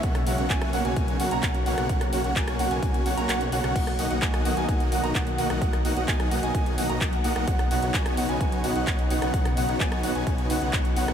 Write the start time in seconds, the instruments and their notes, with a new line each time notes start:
0.03 detuned saw bass B1, analog synth pad C#3 F#3 A#3 F#4, supersaw synth A#3 C#4 F#4 C#5 F#5, grand piano F#5, kick, closed hi-hat
0.15 cross-stick, closed hi-hat
0.27 detuned saw bass B1, supersaw synth A#3 C#4 F#4 C#5 F#5, grand piano F#5, open hi-hat
0.38 detuned saw bass B1, supersaw synth A#3 C#4 F#4 C#5 F#5, grand piano F#5, closed hi-hat
0.50 detuned saw bass B1, supersaw synth A#3 C#4 F#4 C#5, grand piano G#5, kick, clap, closed hi-hat
0.62 cross-stick, closed hi-hat
0.73 detuned saw bass B1, supersaw synth A#3 C#4 F#4 C#5 F#5, grand piano F#5, open hi-hat
0.85 detuned saw bass B1, supersaw synth A#3 C#4 F#4 C#5 G#5, grand piano G#5, closed hi-hat
0.96 detuned saw bass B1, supersaw synth A#3 C#4 F#4 C#5, grand piano G#5, kick, closed hi-hat
1.08 closed hi-hat
1.20 detuned saw bass B1, supersaw synth A#3 C#4 F#4 C#5 F#5, grand piano F#5, open hi-hat
1.31 detuned saw bass B1, supersaw synth A#3 C#4 F#4 C#5 A#5, grand piano A#5, closed hi-hat
1.43 detuned saw bass B1, supersaw synth A#3 C#4 F#4 C#5, grand piano F#5, kick, clap, closed hi-hat
1.54 closed hi-hat
1.66 detuned saw bass B1, supersaw synth A#3 C#4 F#4 C#5 F#5, grand piano F#5, open hi-hat
1.78 detuned saw bass B1, supersaw synth A#3 C#4 F#4 C#5 F#5, grand piano F#5, cross-stick, closed hi-hat
1.89 detuned saw bass B1, supersaw synth C#4 F#4 F#5, grand piano F#5, kick, closed hi-hat
2.01 cross-stick, closed hi-hat
2.13 detuned saw bass B1, supersaw synth A#3 C#4 F#4 C#5 F#5, grand piano F#5, open hi-hat
2.24 detuned saw bass B1, supersaw synth A#3 C#4 F#4 C#5 F#5, grand piano F#5, closed hi-hat
2.36 detuned saw bass B1, supersaw synth A#3 C#4 C#5, grand piano G#5, kick, clap, closed hi-hat
2.48 cross-stick, closed hi-hat
2.59 detuned saw bass B1, supersaw synth A#3 C#4 F#4 C#5 F#5, grand piano F#5, open hi-hat
2.71 detuned saw bass B1, supersaw synth A#3 C#4 F#4 C#5 G#5, grand piano G#5, closed hi-hat
2.83 detuned saw bass B1, supersaw synth A#3 C#4 F#4 C#5, grand piano G#5, kick, closed hi-hat
2.94 closed hi-hat
3.06 detuned saw bass B1, supersaw synth A#3 C#4 F#4 C#5 F#5, grand piano F#5, open hi-hat
3.17 detuned saw bass B1, supersaw synth A#3 C#4 F#4 C#5 A#5, grand piano A#5, closed hi-hat
3.29 detuned saw bass B1, supersaw synth A#3 C#4 F#4 C#5 F#5, grand piano F#5, clap, closed hi-hat
3.41 closed hi-hat
3.52 detuned saw bass B1, supersaw synth A#3 C#4 F#4 C#5 F#5, grand piano F#5, open hi-hat
3.64 detuned saw bass B1, supersaw synth A#3 C#4 F#4 C#5 F#5, grand piano F#5, cross-stick, closed hi-hat
3.75 detuned saw bass B1, analog synth pad D#3, supersaw synth A#3 D#4 F#4 D#5 F#5, grand piano F#5, kick, closed hi-hat, crash
3.87 cross-stick, closed hi-hat
3.99 detuned saw bass B1, supersaw synth A#3 D#4 F#4 D#5 F#5, grand piano F#5, open hi-hat
4.10 detuned saw bass B1, supersaw synth A#3 D#4 F#4 D#5 F#5, grand piano F#5, closed hi-hat
4.22 detuned saw bass B1, supersaw synth A#3 D#4 F#4 D#5 G#5, grand piano G#5, kick, clap, closed hi-hat
4.34 cross-stick, closed hi-hat
4.45 detuned saw bass B1, supersaw synth A#3 D#4 F#4 D#5 F#5, grand piano F#5, open hi-hat
4.57 detuned saw bass B1, supersaw synth A#3 D#4 F#4 D#5 G#5, grand piano G#5, closed hi-hat
4.69 detuned saw bass B1, supersaw synth A#3 D#4 F#4 D#5 G#5, grand piano G#5, kick, closed hi-hat
4.80 closed hi-hat
4.92 detuned saw bass B1, supersaw synth A#3 D#4 F#4 D#5 F#5, grand piano F#5, open hi-hat
5.03 detuned saw bass B1, supersaw synth A#3 D#4 F#4 D#5 A#5, grand piano A#5, closed hi-hat
5.15 detuned saw bass B1, supersaw synth D#4 F#4 F#5, grand piano F#5, kick, clap, closed hi-hat
5.27 closed hi-hat
5.38 detuned saw bass B1, supersaw synth A#3 D#4 F#4 D#5 F#5, grand piano F#5, open hi-hat
5.50 detuned saw bass B1, supersaw synth A#3 D#4 F#4 D#5 F#5, grand piano F#5, cross-stick, closed hi-hat
5.61 detuned saw bass B1, supersaw synth A#3 D#4 F#4 D#5 F#5, grand piano F#5, kick, closed hi-hat
5.73 cross-stick, closed hi-hat
5.85 detuned saw bass B1, supersaw synth A#3 D#4 F#4 D#5 F#5, grand piano F#5, open hi-hat
5.96 detuned saw bass B1, supersaw synth A#3 D#4 F#4 D#5 F#5, grand piano F#5, closed hi-hat
6.08 detuned saw bass B1, supersaw synth A#3 D#4 D#5, grand piano G#5, kick, clap, closed hi-hat
6.20 cross-stick, closed hi-hat
6.31 detuned saw bass B1, supersaw synth A#3 D#4 F#4 D#5 F#5, grand piano F#5, open hi-hat
6.43 detuned saw bass B1, supersaw synth A#3 D#4 F#4 D#5 G#5, grand piano G#5, closed hi-hat
6.54 detuned saw bass B1, supersaw synth A#3 D#4 F#4 G#5, grand piano G#5, kick, closed hi-hat
6.66 closed hi-hat
6.78 detuned saw bass B1, supersaw synth A#3 D#4 F#4 D#5 F#5, grand piano F#5, open hi-hat
6.89 detuned saw bass B1, supersaw synth A#3 D#4 F#4 D#5 A#5, grand piano A#5, closed hi-hat
7.01 detuned saw bass B1, supersaw synth A#3, grand piano F#5, kick, clap, closed hi-hat
7.13 closed hi-hat
7.24 detuned saw bass B1, supersaw synth A#3 D#4 F#4 D#5 F#5, grand piano F#5, open hi-hat
7.36 detuned saw bass B1, supersaw synth A#3 D#4 F#4 D#5 F#5, grand piano F#5, cross-stick, closed hi-hat
7.48 detuned saw bass B1, analog synth pad C#3 B3 D#4, supersaw synth B3 D#4 F#4 C#5, grand piano F#5, kick, closed hi-hat
7.59 cross-stick, closed hi-hat
7.71 detuned saw bass B1, supersaw synth B3 D#4 F#4 C#5 F#5, grand piano F#5, open hi-hat
7.82 detuned saw bass B1, supersaw synth B3 D#4 F#4 C#5 F#5, grand piano F#5, closed hi-hat
7.94 detuned saw bass B1, supersaw synth B3 D#4 F#4 C#5 G#5, grand piano G#5, kick, clap, closed hi-hat
8.06 cross-stick, closed hi-hat
8.17 detuned saw bass B1, supersaw synth B3 D#4 F#4 C#5 F#5, grand piano F#5, open hi-hat
8.29 detuned saw bass B1, supersaw synth B3 D#4 F#4 C#5 G#5, grand piano G#5, closed hi-hat
8.41 detuned saw bass B1, supersaw synth B3 D#4 F#4 C#5 G#5, grand piano G#5, kick, closed hi-hat
8.52 closed hi-hat
8.64 detuned saw bass B1, supersaw synth B3 D#4 F#4 C#5 F#5, grand piano F#5, open hi-hat
8.75 detuned saw bass B1, supersaw synth B3 D#4 F#4 C#5 F#5, grand piano F#5, closed hi-hat
8.87 detuned saw bass B1, supersaw synth B3 D#4 F#4 C#5 F#5, kick, clap, closed hi-hat
8.99 closed hi-hat
9.10 detuned saw bass B1, supersaw synth B3 D#4 F#4 C#5 F#5, grand piano F#5, open hi-hat
9.22 detuned saw bass B1, supersaw synth B3 D#4 F#4 C#5 F#5, grand piano F#5, cross-stick, closed hi-hat
9.34 detuned saw bass B1, supersaw synth B3 D#4 F#4 C#5 F#5, grand piano F#5, kick, closed hi-hat
9.45 cross-stick, closed hi-hat
9.57 detuned saw bass B1, supersaw synth B3 D#4 F#4 C#5 F#5, grand piano F#5, open hi-hat
9.69 detuned saw bass B1, supersaw synth B3 D#4 F#4 C#5 F#5, grand piano F#5, closed hi-hat
9.80 detuned saw bass B1, supersaw synth B3 D#4 F#4 C#5, grand piano G#5, kick, clap, closed hi-hat
9.92 cross-stick, closed hi-hat
10.03 detuned saw bass B1, supersaw synth B3 D#4 F#4 C#5 F#5, grand piano F#5, open hi-hat
10.15 detuned saw bass B1, supersaw synth B3 D#4 F#4 C#5 G#5, grand piano G#5, closed hi-hat
10.27 detuned saw bass B1, supersaw synth B3 D#4 F#4 C#5 G#5, grand piano G#5, kick, closed hi-hat
10.38 closed hi-hat
10.50 detuned saw bass B1, supersaw synth B3 D#4 F#4 C#5 F#5, grand piano F#5, open hi-hat
10.62 detuned saw bass B1, supersaw synth B3 D#4 F#4 C#5 F#5, grand piano F#5, closed hi-hat
10.73 detuned saw bass B1, supersaw synth B3 D#4 F#4 C#5 F#5, grand piano F#5, kick, clap, closed hi-hat
10.85 closed hi-hat
10.96 detuned saw bass B1, supersaw synth B3 D#4 F#4 C#5 F#5, grand piano F#5, open hi-hat
11.08 detuned saw bass B1, supersaw synth B3 D#4 F#4 C#5 F#5, grand piano F#5, cross-stick, closed hi-hat